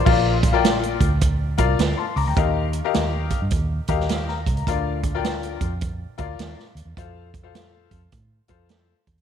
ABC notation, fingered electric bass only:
X:1
M:4/4
L:1/16
Q:"Swing" 1/4=104
K:Bb
V:1 name="Fingered electric bass" clef=bass
B,,,6 D,,4 C,,2 D,, z _D,, =D,, | E,,4 E,,3 G,, E,,2 E,,4 _D,,2 | D,,6 F,,4 D,,2 E,, z E,, =E,, | F,,6 F,,2 A,,2 F,,4 =E,,2 |]